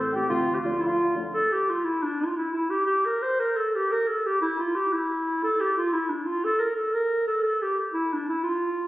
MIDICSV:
0, 0, Header, 1, 4, 480
1, 0, Start_track
1, 0, Key_signature, -1, "minor"
1, 0, Tempo, 339175
1, 420, Time_signature, 6, 3, 24, 8
1, 12560, End_track
2, 0, Start_track
2, 0, Title_t, "Flute"
2, 0, Program_c, 0, 73
2, 178, Note_on_c, 0, 79, 81
2, 417, Note_on_c, 0, 77, 71
2, 438, Note_off_c, 0, 79, 0
2, 805, Note_off_c, 0, 77, 0
2, 814, Note_on_c, 0, 77, 69
2, 1190, Note_off_c, 0, 77, 0
2, 1216, Note_on_c, 0, 77, 53
2, 1595, Note_off_c, 0, 77, 0
2, 12560, End_track
3, 0, Start_track
3, 0, Title_t, "Clarinet"
3, 0, Program_c, 1, 71
3, 0, Note_on_c, 1, 69, 74
3, 199, Note_off_c, 1, 69, 0
3, 212, Note_on_c, 1, 67, 72
3, 405, Note_off_c, 1, 67, 0
3, 414, Note_on_c, 1, 65, 77
3, 769, Note_on_c, 1, 67, 44
3, 790, Note_off_c, 1, 65, 0
3, 838, Note_on_c, 1, 65, 77
3, 859, Note_off_c, 1, 67, 0
3, 1133, Note_on_c, 1, 64, 53
3, 1154, Note_off_c, 1, 65, 0
3, 1240, Note_on_c, 1, 65, 78
3, 1261, Note_off_c, 1, 64, 0
3, 1636, Note_off_c, 1, 65, 0
3, 1889, Note_on_c, 1, 69, 82
3, 2147, Note_on_c, 1, 67, 69
3, 2168, Note_off_c, 1, 69, 0
3, 2404, Note_on_c, 1, 65, 64
3, 2425, Note_off_c, 1, 67, 0
3, 2607, Note_on_c, 1, 64, 71
3, 2628, Note_off_c, 1, 65, 0
3, 2867, Note_on_c, 1, 62, 68
3, 2888, Note_off_c, 1, 64, 0
3, 3118, Note_on_c, 1, 65, 60
3, 3140, Note_off_c, 1, 62, 0
3, 3331, Note_off_c, 1, 65, 0
3, 3350, Note_on_c, 1, 64, 70
3, 3567, Note_off_c, 1, 64, 0
3, 3588, Note_on_c, 1, 64, 66
3, 3820, Note_on_c, 1, 67, 72
3, 3841, Note_off_c, 1, 64, 0
3, 4044, Note_off_c, 1, 67, 0
3, 4052, Note_on_c, 1, 67, 81
3, 4320, Note_on_c, 1, 70, 74
3, 4342, Note_off_c, 1, 67, 0
3, 4561, Note_on_c, 1, 72, 82
3, 4582, Note_off_c, 1, 70, 0
3, 4805, Note_on_c, 1, 70, 93
3, 4827, Note_off_c, 1, 72, 0
3, 5047, Note_on_c, 1, 69, 75
3, 5069, Note_off_c, 1, 70, 0
3, 5307, Note_on_c, 1, 67, 77
3, 5329, Note_off_c, 1, 69, 0
3, 5538, Note_on_c, 1, 70, 80
3, 5559, Note_off_c, 1, 67, 0
3, 5769, Note_on_c, 1, 69, 71
3, 5790, Note_off_c, 1, 70, 0
3, 6025, Note_on_c, 1, 67, 75
3, 6046, Note_off_c, 1, 69, 0
3, 6232, Note_off_c, 1, 67, 0
3, 6246, Note_on_c, 1, 64, 87
3, 6462, Note_off_c, 1, 64, 0
3, 6494, Note_on_c, 1, 65, 67
3, 6725, Note_on_c, 1, 67, 71
3, 6746, Note_off_c, 1, 65, 0
3, 6969, Note_on_c, 1, 64, 76
3, 6990, Note_off_c, 1, 67, 0
3, 7684, Note_on_c, 1, 69, 81
3, 7706, Note_off_c, 1, 64, 0
3, 7926, Note_on_c, 1, 67, 71
3, 7947, Note_off_c, 1, 69, 0
3, 8147, Note_off_c, 1, 67, 0
3, 8168, Note_on_c, 1, 65, 77
3, 8370, Note_off_c, 1, 65, 0
3, 8385, Note_on_c, 1, 64, 80
3, 8622, Note_on_c, 1, 62, 63
3, 8643, Note_off_c, 1, 64, 0
3, 8853, Note_on_c, 1, 65, 69
3, 8874, Note_off_c, 1, 62, 0
3, 9114, Note_on_c, 1, 69, 85
3, 9135, Note_off_c, 1, 65, 0
3, 9335, Note_on_c, 1, 70, 71
3, 9356, Note_off_c, 1, 69, 0
3, 9554, Note_off_c, 1, 70, 0
3, 9563, Note_on_c, 1, 69, 75
3, 9817, Note_on_c, 1, 70, 91
3, 9838, Note_off_c, 1, 69, 0
3, 10283, Note_off_c, 1, 70, 0
3, 10292, Note_on_c, 1, 69, 74
3, 10498, Note_off_c, 1, 69, 0
3, 10507, Note_on_c, 1, 69, 78
3, 10782, Note_on_c, 1, 67, 71
3, 10803, Note_off_c, 1, 69, 0
3, 11008, Note_off_c, 1, 67, 0
3, 11225, Note_on_c, 1, 64, 76
3, 11504, Note_on_c, 1, 62, 64
3, 11525, Note_off_c, 1, 64, 0
3, 11718, Note_off_c, 1, 62, 0
3, 11727, Note_on_c, 1, 64, 69
3, 11937, Note_on_c, 1, 65, 70
3, 11958, Note_off_c, 1, 64, 0
3, 12560, Note_off_c, 1, 65, 0
3, 12560, End_track
4, 0, Start_track
4, 0, Title_t, "Grand piano"
4, 0, Program_c, 2, 0
4, 0, Note_on_c, 2, 45, 64
4, 182, Note_on_c, 2, 52, 45
4, 189, Note_on_c, 2, 57, 41
4, 190, Note_on_c, 2, 60, 46
4, 380, Note_off_c, 2, 45, 0
4, 411, Note_off_c, 2, 52, 0
4, 415, Note_off_c, 2, 57, 0
4, 415, Note_off_c, 2, 60, 0
4, 417, Note_on_c, 2, 38, 56
4, 913, Note_on_c, 2, 53, 46
4, 915, Note_on_c, 2, 57, 43
4, 924, Note_on_c, 2, 62, 55
4, 1382, Note_off_c, 2, 53, 0
4, 1383, Note_off_c, 2, 57, 0
4, 1388, Note_off_c, 2, 62, 0
4, 1624, Note_on_c, 2, 53, 45
4, 1628, Note_on_c, 2, 57, 35
4, 1637, Note_on_c, 2, 62, 42
4, 1818, Note_off_c, 2, 38, 0
4, 1854, Note_off_c, 2, 53, 0
4, 1856, Note_off_c, 2, 57, 0
4, 1860, Note_off_c, 2, 62, 0
4, 12560, End_track
0, 0, End_of_file